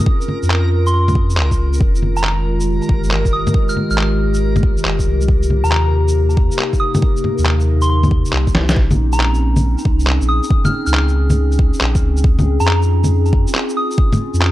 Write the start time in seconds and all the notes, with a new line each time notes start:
Already playing: C4 C#4 F4 G#4 A#4
0.06 kick
0.21 shaker
0.28 low bongo
0.43 F2, shaker
0.50 clap
0.86 C6, shaker
0.94 C6
1.08 low bongo, shaker
1.15 kick
1.30 shaker
1.37 C#2, clap
1.51 kick, shaker
1.58 C#2
1.73 shaker
1.80 F1 D#3, kick
1.95 shaker
2.02 low bongo
2.10 G#3
2.17 A#5, shaker
2.24 clap
2.35 G4
2.60 shaker
2.82 shaker
2.89 G1, kick
3.04 shaker
3.11 clap
3.25 F1, kick, shaker
3.33 D#6
3.47 low bongo, shaker
3.54 kick
3.69 F6, shaker
3.76 low bongo
3.90 G#1 F6, shaker
3.98 clap
4.34 shaker
4.56 low bongo, shaker
4.63 kick
4.77 shaker
4.85 F1, clap
4.99 kick, shaker
5.06 C2
5.21 shaker
5.28 C3, kick
5.42 shaker
5.50 low bongo
5.58 A#3
5.64 D#2 A#5, shaker
5.72 clap
6.07 D#4, shaker
6.30 shaker
6.37 kick
6.51 shaker
6.59 clap
6.73 kick, shaker
6.80 D#6
6.95 low bongo, shaker
7.02 kick
7.17 shaker
7.24 low bongo
7.38 D#2, shaker
7.46 clap
7.60 shaker
7.82 C6, shaker
7.90 C6
8.03 low bongo, shaker
8.11 kick
8.25 shaker
8.33 C2, clap
8.47 kick, shaker
8.55 snare
8.69 snare, shaker
8.76 A#1 C#4, kick
8.84 C4
8.91 low bongo, shaker
9.12 A#5, shaker
9.20 clap
9.34 shaker
9.56 low bongo, shaker
9.78 shaker
9.83 C2 G#4, kick
10.00 shaker
10.07 clap
10.21 A#1, shaker
10.29 D#6
10.43 shaker
10.50 kick
10.65 F6, low bongo, shaker
10.86 C#2 F6, shaker
10.94 clap
11.08 shaker
11.30 low bongo, shaker
11.52 shaker
11.59 kick
11.73 shaker
11.81 A#1, clap
11.95 kick, shaker
12.02 C#2
12.17 shaker
12.24 kick
12.39 low bongo, shaker
12.60 F2 F4 A#5, shaker
12.68 clap
12.82 shaker
13.04 low bongo, shaker
13.26 shaker
13.33 kick
13.47 shaker
13.55 clap
13.69 shaker
13.77 D#6
13.91 shaker
13.98 kick
14.13 low bongo, shaker
14.34 F2, shaker
14.42 clap